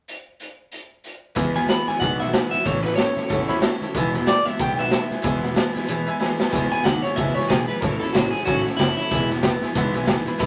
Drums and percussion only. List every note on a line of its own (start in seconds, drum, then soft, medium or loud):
0.08 closed hi-hat medium
0.40 closed hi-hat soft
0.72 closed hi-hat medium
1.04 closed hi-hat medium
1.36 kick loud
1.36 snare soft
1.55 snare soft
1.69 snare loud
1.69 hi-hat pedal medium
1.88 snare soft
2.01 kick loud
2.01 snare soft
2.20 snare soft
2.34 snare loud
2.34 hi-hat pedal medium
2.52 snare soft
2.60 snare soft
2.65 kick loud
2.65 snare soft
2.85 snare soft
2.98 snare medium
2.98 hi-hat pedal medium
3.17 snare soft
3.30 kick loud
3.30 snare soft
3.49 snare soft
3.62 snare loud
3.62 hi-hat pedal medium
3.82 snare soft
3.94 kick loud
3.94 snare soft
4.14 snare soft
4.27 snare loud
4.27 hi-hat pedal medium
4.46 snare soft
4.60 kick loud
4.60 snare soft
4.79 snare soft
4.91 snare loud
4.91 hi-hat pedal medium
5.11 snare soft
5.24 kick loud
5.24 snare soft
5.43 snare soft
5.56 snare loud
5.56 hi-hat pedal medium
5.76 snare soft
5.82 snare soft
6.21 snare medium
6.40 snare medium
6.53 kick loud
6.53 snare soft
6.63 snare soft
6.72 snare soft
6.85 kick medium
6.85 snare loud
6.85 hi-hat pedal medium
7.05 snare soft
7.18 kick loud
7.18 snare soft
7.28 snare soft
7.38 snare soft
7.50 kick medium
7.50 snare loud
7.50 hi-hat pedal medium
7.70 snare soft
7.82 kick loud
7.82 snare soft
8.02 snare soft
8.15 kick medium
8.15 snare loud
8.15 hi-hat pedal medium
8.35 snare soft
8.47 kick loud
8.47 snare soft
8.58 snare soft
8.67 snare soft
8.79 kick medium
8.79 snare loud
8.79 hi-hat pedal medium
8.99 snare soft
9.11 kick loud
9.11 snare soft
9.30 snare soft
9.43 kick medium
9.43 snare loud
9.43 hi-hat pedal medium
9.62 snare soft
9.75 kick loud
9.75 snare soft
9.94 snare soft
10.07 kick medium
10.07 snare loud
10.07 hi-hat pedal medium
10.26 snare soft
10.39 kick loud
10.39 snare soft